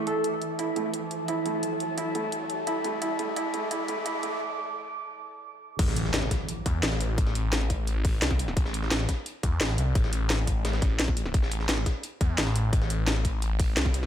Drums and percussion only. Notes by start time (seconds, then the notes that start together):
0.07 closed hi-hat
0.24 closed hi-hat
0.42 closed hi-hat
0.59 closed hi-hat
0.76 closed hi-hat
0.94 closed hi-hat
1.11 closed hi-hat
1.28 closed hi-hat
1.46 closed hi-hat
1.63 closed hi-hat
1.80 closed hi-hat
1.98 closed hi-hat
2.15 closed hi-hat
2.32 closed hi-hat
2.50 closed hi-hat
2.67 closed hi-hat
2.84 closed hi-hat
3.02 closed hi-hat
3.19 closed hi-hat
3.36 closed hi-hat
3.54 closed hi-hat
3.71 closed hi-hat
3.88 closed hi-hat
4.06 closed hi-hat
4.23 closed hi-hat
5.79 kick, closed hi-hat, crash
5.88 snare
5.96 closed hi-hat
6.05 snare
6.14 snare, closed hi-hat
6.22 snare
6.31 kick, snare, closed hi-hat
6.48 closed hi-hat
6.66 kick, closed hi-hat
6.83 snare, closed hi-hat
6.92 snare
7.01 closed hi-hat
7.18 kick, closed hi-hat
7.27 snare
7.35 closed hi-hat
7.53 snare, closed hi-hat
7.61 snare, closed hi-hat
7.70 kick, closed hi-hat
7.87 closed hi-hat
8.05 kick, closed hi-hat, open hi-hat
8.22 snare, closed hi-hat
8.31 kick, snare, closed hi-hat
8.39 closed hi-hat
8.48 snare
8.57 kick, closed hi-hat
8.65 snare
8.74 closed hi-hat
8.83 snare
8.91 snare, closed hi-hat
9.00 snare
9.09 kick, snare, closed hi-hat
9.26 closed hi-hat
9.43 kick, closed hi-hat
9.61 snare, closed hi-hat
9.69 snare
9.78 closed hi-hat
9.95 kick, closed hi-hat
10.04 snare
10.13 closed hi-hat
10.30 snare, closed hi-hat
10.39 snare, closed hi-hat
10.47 kick, closed hi-hat
10.65 snare, closed hi-hat
10.73 snare
10.82 kick, snare, closed hi-hat
10.99 snare, closed hi-hat
11.08 kick, snare
11.17 closed hi-hat
11.26 snare
11.34 kick, closed hi-hat
11.43 snare
11.51 closed hi-hat
11.60 snare
11.69 snare, closed hi-hat
11.77 snare
11.86 kick, snare, closed hi-hat
12.03 closed hi-hat
12.21 kick, closed hi-hat
12.38 snare, closed hi-hat
12.47 snare
12.55 closed hi-hat
12.73 kick, closed hi-hat
12.82 snare
12.90 closed hi-hat
13.07 snare, closed hi-hat
13.16 snare, closed hi-hat
13.25 kick, closed hi-hat
13.42 closed hi-hat
13.60 kick, closed hi-hat, open hi-hat
13.77 snare, closed hi-hat
13.86 kick, snare, closed hi-hat
13.94 closed hi-hat
14.03 snare